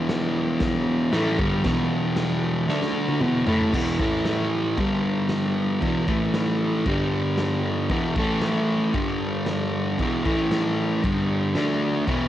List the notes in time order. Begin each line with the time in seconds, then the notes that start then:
Already playing: E2 B2 E3
0.09 snare, crash
0.60 kick, snare, crash
1.12 A2 E3 A3, snare, crash
1.39 G2 D3 G3, kick
1.64 E2 B2 E3, kick, snare, crash
2.16 snare, crash
2.68 D3 A3 D4, snare
2.82 snare
3.08 high tom
3.20 E2 B2 E3, mid tom
3.46 A2 E3 A3, floor tom
3.61 floor tom
3.73 E2 B2 E3, kick, crash
3.99 A2 E3 A3, kick
4.25 snare, crash
4.78 G2 D3 G3, kick, crash
5.29 snare, crash
5.81 E2 B2 E3, kick, crash
6.07 A2 E3 A3, kick
6.34 snare, crash
6.86 G2 D3 G3, kick, crash
7.38 snare, crash
7.90 E2 B2 E3, kick, crash
8.16 A2 E3 A3, kick
8.42 snare, crash
8.94 G2 D3 G3, kick, crash
9.46 snare, crash
9.99 E2 B2 E3, kick, crash
10.25 A2 E3 A3, kick
10.51 snare, crash
11.04 G2 D3 G3, kick, crash
11.55 D3 A3 D4, snare, crash
12.06 E2 B2 E3, kick, crash